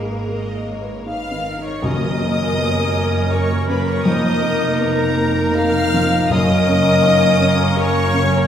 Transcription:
Already playing: double bass section G#1, felt piano G#2 D#4, viola section G#3, cello section A#3, violin section A#4 B4
0.03 felt piano G#4
0.29 felt piano A#4, violin section D#5
0.55 felt piano D#5
0.69 violin section C#5
0.81 felt piano B4
1.06 felt piano D#4, violin section B4 F5 F6, flute section F5
1.31 felt piano D#3
1.47 violin section A#4
1.58 felt piano D#4
1.64 flute section C#5, violin section C#5 C#6
1.82 double bass section F#1, felt piano F#2, timpani F#2, cello section F#2, viola section A#3 A#4, french horn section C#4 A#4, clarinet C#4, oboe A#4, flute section D#5, violin section D#5 D#6, tam-tam
2.20 felt piano A#3
2.56 felt piano B3
2.95 felt piano A#3
3.31 felt piano A#4, violin section C#5 C#6, flute section C#5
3.68 felt piano C#3, flute section B4, violin section B4 B5
3.87 flute section C#5, violin section C#5 C#6
4.04 double bass section F1, cello section F2, felt piano F2, french horn section D#4, clarinet D#4, violin section D#5 D#6, flute section D#5
4.42 felt piano A#3
4.78 felt piano B3, flute section A#4, violin section A#4 A#5
5.17 felt piano A#3
5.55 felt piano A#4, violin section F5 F6, flute section F5
5.94 felt piano F3
6.29 double bass section F#1, cello section F#2, timpani F#2, felt piano F#2, french horn section A#3 C#4, clarinet C#4, viola section C#4 A#4, oboe A#4, flute section D#5, violin section D#5 D#6
6.68 felt piano C#4
7.05 felt piano D#4
7.41 felt piano C#4
7.77 felt piano A#4, flute section C#5, violin section C#5 C#6
8.13 felt piano C#3

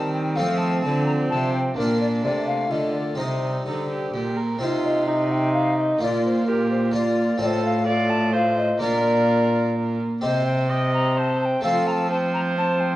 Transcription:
Already playing: harpsichord D#3 C4 G4 D#5, cello D#3, trombone G3, viola C4, recorder A5
0.13 recorder G5
0.36 cello F3, harpsichord F3 A3 C4 F4, trombone A3, viola C4, recorder F5
0.58 recorder A5
0.81 recorder A5
0.85 cello D3, harpsichord D3, trombone F3
1.06 recorder A#5
1.30 cello C3, harpsichord C3, recorder A5
1.53 recorder G5
1.74 cello A#2, harpsichord A#3 D4 F4, trombone A#3, viola D4, recorder A#4
1.79 harpsichord A#2
2.01 recorder D5
2.24 cello C3, harpsichord C3, trombone A3, recorder D5
2.47 recorder F5
2.69 harpsichord D3, cello D3, viola F4, recorder D#5
2.94 recorder D5
3.15 cello C3, harpsichord C3 C4 D#5, trombone G3, viola D#4, recorder C5
3.66 cello D3, harpsichord D3, viola D#4
3.89 viola G4
4.13 harpsichord A#2, cello A#2, viola G4
4.37 viola A#4
4.59 harpsichord C3 C4 D#4, cello C3, trombone D#4, viola F4, recorder C5
4.86 recorder D#5
5.07 viola D#4, trombone D#4, recorder D#5
5.31 recorder G5
5.54 recorder F5
5.79 recorder D#5
5.99 cello A#2, harpsichord A#3 F4, trombone F4, viola F4, recorder D5
6.03 harpsichord A#2
6.26 recorder C5
6.47 trombone F4, viola G4, recorder A#4
6.71 recorder C5
6.92 harpsichord A#3 F4, viola F4, trombone F4, recorder D5
7.38 harpsichord A2 C4 F4, viola A4
7.42 cello A2, trombone F4, recorder D5
7.47 recorder C5
7.65 recorder F5
7.87 trombone F4, viola D5, recorder F5
8.10 recorder A5
8.33 trombone F4, viola C5, recorder F5
8.58 recorder D#5
8.78 harpsichord A#2 A#3 D4 F4, trombone F4, viola A#4
8.83 cello A#2, recorder D5
10.21 cello C3, harpsichord C3 C4 G4, trombone C4, viola C5, recorder D#5
10.46 recorder G5
10.69 trombone C4, viola D#5, recorder G5
10.94 recorder A#5
11.16 viola C5, recorder A5
11.41 recorder A5
11.45 recorder G5
11.61 harpsichord F3 A3 C4 F4, cello F3, trombone C4, viola A4, recorder F5
11.87 recorder A#5
11.92 recorder A5
12.10 trombone C4, viola C5, recorder A5
12.34 recorder A#5
12.58 trombone C4, recorder A5
12.81 recorder G5

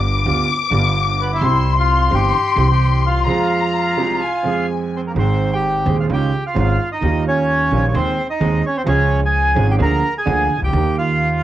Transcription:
Already playing: upright bass G1, grand piano G1 G2 D3 G3 B3 F4, violin section D6
0.26 upright bass D2, grand piano D2 D3 G3 B3 F4
0.70 upright bass G1, grand piano G1 G2 D3 G3 B3 F4
1.20 bandoneon B3 B4
1.32 bandoneon E4 E5
1.40 upright bass C2, grand piano C2 C3 G3 C4, violin section C6
1.44 grand piano G4
1.79 bandoneon F4 F5
2.11 upright bass G1, grand piano G1 G2 E3 G3 C4 G4, bandoneon G5
2.15 bandoneon G4
2.55 upright bass C2, grand piano C2 C3 E3 G3 C4
2.60 grand piano G4
2.72 bandoneon G4 G5
3.06 bandoneon F4 F5
3.25 grand piano F2 F3 G#3 C4, violin section A#5
3.29 grand piano G#4
3.97 grand piano C2 C3 F3 G#3 C4 G#4
4.21 violin section G#5
4.43 grand piano F2 F3 G#3 C4
4.47 grand piano G#4
4.96 bandoneon C4 C5
5.07 bandoneon A#3 A#4
5.14 upright bass G#1, grand piano G#1 G#2 D#3 G#3 C4
5.18 bandoneon C4 C5, grand piano C5
5.53 bandoneon G4 G5
5.86 grand piano D#1 D#2 D#3 G#3 C4 G#4, upright bass D#2
6.00 bandoneon F4 F5
6.09 upright bass C#2, grand piano C#2 C#3 D#3 G#3 C#4 F4, bandoneon G5
6.13 bandoneon G4
6.47 bandoneon F4 F5
6.54 grand piano G#1 G#2 D#3 G#3 C#4 F4, upright bass G#1
6.92 bandoneon D#4 D#5
7.02 upright bass D#2, grand piano D#2 D#3 G3 A#3 F4
7.28 bandoneon C#4 C#5
7.71 upright bass A#1, grand piano A#1 A#2 D#3 G3 A#3 F4
7.88 bandoneon C#5
7.94 grand piano D#2 D#3 G#3 C4 G#4, upright bass D#2, bandoneon C4 C5
8.30 bandoneon D#4 D#5
8.40 grand piano D#2 D#3 G#3 C4 G#4, upright bass D#2
8.66 bandoneon C#4 C#5
8.77 bandoneon C4 C5
8.84 grand piano C#2 C#3 F3 G#3 C#4, upright bass C#2
8.88 bandoneon C#4 C#5, grand piano G#4
9.25 bandoneon G#4 G#5
9.55 grand piano G#1 G#2 F3 G#3 C#4 G#4, upright bass G#1
9.71 bandoneon G4 G5
9.78 grand piano D2 D3 F3 A#3 D4 G#4, upright bass D2, bandoneon A#5
9.83 bandoneon A#4
10.18 bandoneon G#4 G#5
10.26 grand piano D2 D3 F3 A#3 D4 G#4, upright bass D2
10.56 upright bass C2, grand piano C2
10.62 upright bass C#2, grand piano C#2, bandoneon G4 G5
10.68 upright bass D2, grand piano D2
10.73 upright bass D#2, grand piano D#2 D#3 G3 A#3
10.77 grand piano G4
10.99 bandoneon F4 F5

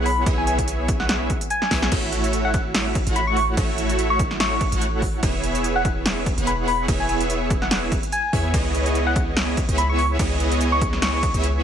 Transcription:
Already playing: 808-style bass B1, supersaw synth B3 E4 G#4 C#5 F#5
0.06 soft synth lead B5, open hi-hat
0.26 808-style bass B1, supersaw synth B3 E4 G#4 C#5 E5, kick, closed hi-hat
0.38 soft synth lead G#5
0.47 soft synth lead G#5, closed hi-hat
0.58 kick, closed hi-hat
0.68 closed hi-hat
0.88 kick, closed hi-hat
1.00 soft synth lead F#5, snare
1.09 soft synth lead F#5, snare, closed hi-hat
1.30 kick, closed hi-hat
1.41 closed hi-hat
1.50 soft synth lead G#5, closed hi-hat
1.62 snare
1.71 808-style bass B1, supersaw synth B3 E4 G#4 C#5 E5, kick, snare, open hi-hat
1.82 snare
1.92 808-style bass A1, supersaw synth A3 E4 F#4 C#5 E5, kick, closed hi-hat, crash
2.12 closed hi-hat
2.24 closed hi-hat
2.33 closed hi-hat
2.45 soft synth lead F#5
2.54 soft synth lead F#5, kick, closed hi-hat
2.75 snare, closed hi-hat, crash
2.95 kick, closed hi-hat
3.07 808-style bass A1, supersaw synth A3 E4 F#4 C#5 F#5, closed hi-hat
3.16 soft synth lead B5, closed hi-hat
3.27 soft synth lead C#6
3.37 soft synth lead C#6, open hi-hat
3.57 808-style bass A1, supersaw synth A3 E4 F#4 C#5 E5, kick, closed hi-hat, crash
3.78 closed hi-hat
3.89 closed hi-hat
3.99 closed hi-hat
4.10 soft synth lead C#6
4.19 kick, closed hi-hat
4.31 snare
4.40 soft synth lead C#6, snare, closed hi-hat, crash
4.61 kick, closed hi-hat
4.72 808-style bass A1, supersaw synth A3 E4 F#4 C#5 F#5, closed hi-hat
4.81 closed hi-hat
5.02 kick, open hi-hat
5.23 808-style bass E1, supersaw synth B3 E4 G#4 C#5 E5, kick, closed hi-hat, crash
5.43 closed hi-hat
5.55 closed hi-hat
5.64 closed hi-hat
5.76 soft synth lead F#5
5.85 kick, closed hi-hat
6.06 snare, closed hi-hat, crash
6.26 kick, closed hi-hat
6.38 808-style bass E1, supersaw synth B3 E4 G#4 C#5 F#5, closed hi-hat
6.47 soft synth lead B5, closed hi-hat
6.68 soft synth lead B5, open hi-hat
6.88 808-style bass E1, supersaw synth B3 E4 G#4 C#5 E5, kick, closed hi-hat, crash
7.00 soft synth lead G#5
7.09 soft synth lead G#5, closed hi-hat
7.20 closed hi-hat
7.30 closed hi-hat
7.50 kick, closed hi-hat
7.62 soft synth lead F#5, snare
7.71 soft synth lead F#5, snare, closed hi-hat, crash
7.92 kick, closed hi-hat
8.03 closed hi-hat
8.12 soft synth lead G#5, closed hi-hat
8.33 808-style bass E2, supersaw synth B3 E4 G#4 C#5 E5, kick, open hi-hat
8.54 808-style bass C#2, supersaw synth B3 E4 G#4 C#5 D#5, kick, closed hi-hat, crash
8.75 closed hi-hat
8.86 closed hi-hat
8.95 closed hi-hat
9.07 soft synth lead F#5
9.16 soft synth lead F#5, kick, closed hi-hat
9.37 snare, closed hi-hat, crash
9.57 kick, closed hi-hat
9.69 808-style bass C#2, supersaw synth B3 E4 G#4 C#5 E5, closed hi-hat
9.78 soft synth lead B5, closed hi-hat
9.89 soft synth lead C#6
9.99 soft synth lead C#6, open hi-hat
10.19 808-style bass C#2, supersaw synth B3 E4 G#4 C#5 D#5, kick, closed hi-hat, crash
10.40 closed hi-hat
10.52 closed hi-hat
10.61 closed hi-hat
10.72 soft synth lead C#6
10.81 kick, closed hi-hat
10.93 snare
11.02 soft synth lead C#6, snare, closed hi-hat, crash
11.23 kick, closed hi-hat
11.34 808-style bass C#2, supersaw synth B3 E4 G#4 C#5 E5, closed hi-hat
11.43 closed hi-hat

